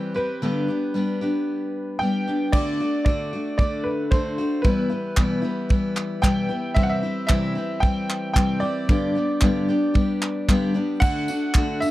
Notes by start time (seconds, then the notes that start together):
Already playing: E3 G3 C4 G4 B4
0.14 G3 C4 G4 B4
0.42 G2 D3 G3 B3 D4 G4
0.68 G3 B3 D4 G4
0.94 G3 B3 D4 G4
1.21 G3 B3 D4 G4
1.99 G3 B3 D4 G5
2.03 G4
2.27 G3 B3 D4 G4
2.52 D3 A3 D4 D5, kick, crash
2.57 F#4
2.80 A3 D4 F#4
3.05 D3 A3 D4 F#4 D5, kick
3.33 A3 D4 F#4
3.58 D3 A3 D5, kick
3.62 D4 F#4
3.84 B4
4.11 D3 A3 D4 F#4 C5, kick
4.38 A3 D4 F#4
4.62 E2 B2 E3 G3 B3 E4 B4, kick
4.90 E3 G3 B3 E4
5.17 E2 B2 E3 G3 B3 E4, kick, clap
5.42 E3 G3 B3 E4
5.69 E3 G3 B3 E4, kick
5.97 clap
6.22 E2 B2 E3 G3 B3 E4 G5, kick, clap
6.49 E3 G3 B3 E4
6.74 C3 E3 G3 C4 E4 E5, kick
6.83 F#5
6.90 E5
7.03 G3 C4 E4
7.27 C3 E3 G3 C4 E5, kick, clap
7.31 E4
7.55 G3 C4 E4
7.80 E3 G3 C4 G5, kick
7.85 E4
8.10 clap
8.34 C3 E3 G3 C4 E4 G5, kick, clap
8.60 C4 E4 D5
8.65 G3
8.89 G2 D3 G3 B3 D4 G4, kick
9.15 G3 B3 D4 G4
9.41 G2 D3 G3 B3 D4 G4, kick, clap
9.69 G3 B3 D4 G4
9.94 G3 B3 D4 G4, kick
10.22 clap
10.49 G2 D3 G3 B3 D4 G4, kick, clap
10.74 G3 B3 D4 G4
11.00 D3 A3 D4 F#4 F#5, kick, crash
11.28 A3 D4 F#4, tambourine
11.54 D3 A3 D4 F#4, kick, clap
11.80 D4 F#4 E5, tambourine
11.86 A3